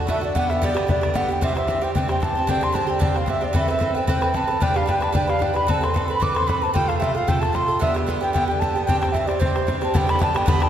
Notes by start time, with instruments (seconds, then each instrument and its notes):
0.07 bouzouki A2 D3 A3 F#4, flute E5, bodhran
0.21 bouzouki D3 A3 F#4, flute D5
0.35 bouzouki G2 D3 B3 G4, flute F#5, bodhran
0.43 bodhran
0.50 bouzouki D3 B3 G4, flute E5, bodhran
0.62 bouzouki G2 D3 B3 G4, flute D5, bodhran
0.74 bouzouki D3 B3 G4, bodhran
0.87 bouzouki G2 D3 B3 G4, flute D5, bodhran
1.01 bouzouki D3 B3 G4, bodhran
1.14 bouzouki G2 D3 B3 G4, flute F#5, bodhran
1.28 bouzouki D3 B3 G4, flute G5
1.41 bouzouki G2 E3 C4 G4, flute E5, bodhran
1.55 bouzouki E3 C4 G4, flute E5, bodhran
1.67 bouzouki G2 E3 C4 G4, bodhran
1.81 bouzouki E3 C4 G4, flute G5
1.95 bouzouki G2 E3 C4 G4, flute G5, bodhran
2.09 bouzouki E3 C4 G4, flute G5, bodhran
2.16 bodhran
2.20 bouzouki G2 E3 C4 G4, flute A5, bodhran
2.35 bouzouki E3 C4 G4
2.47 bouzouki G2 D3 C4 G4, flute G5, bodhran
2.61 bouzouki D3 C4 G4, flute C6, bodhran
2.72 bouzouki G2 D3 C4 G4, flute A5, bodhran
2.87 bouzouki D3 C4 G4, flute G5
2.99 bouzouki G2 D3 C4 G4, flute G5, bodhran
3.13 bouzouki C4 G4, flute F5 G5, bodhran
3.18 bouzouki D3
3.22 bodhran
3.26 bouzouki G2 D3 C4 G4, flute E5, bodhran
3.41 bouzouki D3 C4 G4, flute D5
3.53 bouzouki E3 C4 A4 B4, flute E5, bodhran
3.68 bouzouki C4 A4 B4, flute E5, bodhran
3.79 bouzouki E3 C4 A4 B4, bodhran
3.95 bouzouki C4 A4 B4, flute G5
4.07 bouzouki E3 C4 A4 B4, flute G5, bodhran
4.21 bouzouki C4 A4 B4, flute G5, bodhran
4.29 bodhran
4.34 bouzouki E3 C4 A4 B4, flute A5, bodhran
4.47 bouzouki C4 A4 B4
4.60 bouzouki G3 D4 G4 B4, flute G5, bodhran
4.74 bouzouki D4 G4 B4, flute F5, bodhran
4.86 bouzouki G3 D4 G4 B4, flute G5, bodhran
5.00 bouzouki D4 G4 B4, flute A5, bodhran
5.12 bouzouki G3 D4 G4 B4, flute G5, bodhran
5.27 bouzouki D4 G4 B4, flute F5, bodhran
5.36 bouzouki G3, bodhran
5.40 bouzouki D4 G4 B4, flute G5, bodhran
5.54 bouzouki D4 G4 B4, flute B5, bodhran
5.67 bouzouki E3 C4 A4 B4, flute A5, bodhran
5.81 bouzouki C4 A4 B4, flute C6, bodhran
5.94 bouzouki E3 C4 A4 B4, bodhran
6.08 bouzouki C4 A4 B4, flute B5
6.20 bouzouki E3 C4 A4 B4, flute D6, bodhran
6.34 bouzouki C4 A4 B4, flute C6, bodhran
6.43 bodhran
6.47 bouzouki E3 C4 A4 B4, flute B5, bodhran
6.62 bouzouki C4 A4 B4, flute A5
6.74 bouzouki C3 A3 F4 A4, flute G5, bodhran
6.88 bouzouki A3 F4 A4, flute F5, bodhran
7.00 bouzouki C3 A3 F4 A4, flute E5, bodhran
7.15 bouzouki A3 F4 A4, flute F5
7.28 bouzouki C3 A3 F4 A4, flute G5, bodhran
7.41 bouzouki A3 F4 A4, flute A5, bodhran
7.49 bouzouki C3, bodhran
7.54 bouzouki A3 F4 A4, flute C6, bodhran
7.68 bouzouki A3 F4 A4
7.79 bouzouki G2 D3 B3 G4, flute E5, bodhran
7.94 bouzouki D3 B3 G4, bodhran
8.06 bouzouki G2 D3 B3 G4, bodhran
8.21 bouzouki D3 B3 G4, flute G5
8.33 bouzouki G2 D3 B3 G4, flute G5, bodhran
8.48 bouzouki D3 B3 G4, flute G5
8.56 bodhran
8.60 bouzouki G2 D3 B3 G4, flute A5, bodhran
8.75 bouzouki D3 B3 G4
8.86 bouzouki G2 E3 C4 G4, flute G5, bodhran
9.00 bouzouki C4 G4, flute G5, bodhran
9.05 bouzouki E3
9.12 bouzouki G2 E3 C4 G4, flute E5, bodhran
9.27 bouzouki E3 C4 G4, flute D5, bodhran
9.39 bouzouki G2 E3 C4 G4, flute C5, bodhran
9.56 bouzouki E3 C4 G4, bodhran
9.62 bodhran
9.67 bouzouki G2 E3 C4 G4, bodhran
9.81 bouzouki E3 C4 G4, flute A5, bodhran
9.94 bouzouki G2 D3 B3 G4, flute G5, bodhran
10.07 bouzouki D3 B3 G4, flute B5, bodhran
10.19 bouzouki G2 D3 B3 G4, flute A5, bodhran
10.34 bouzouki D3 B3 G4, flute G5, bodhran
10.46 bouzouki G2 D3 B3 G4, flute B5, bodhran
10.55 bodhran
10.60 bouzouki D3 B3 G4, flute A5, bodhran